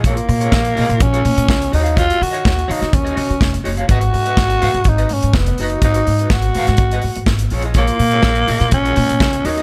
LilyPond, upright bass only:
\new Staff \with { instrumentName = "Upright bass" } { \clef bass \time 4/4 \key gis \dorian \tempo 4 = 124 ais,,8 ais,8 ais,,8 ais,16 ais,16 ais,,8 ais,16 ais,16 cis,8 dis,8~ | dis,8 dis8 dis,8 dis16 dis16 dis,8 dis16 dis16 eis,,8 fis,,8 | gis,,8 gis,8 gis,,8 gis,16 gis,16 gis,,8 gis,16 gis,16 eis,,8 fis,,8 | gis,,8 gis,8 gis,,8 gis,16 gis,16 gis,,8 gis,16 gis,16 gis,,8 ais,,8~ |
ais,,8 ais,8 ais,,8 ais,16 ais,16 ais,,8 ais,16 ais,16 cis,8 dis,8 | }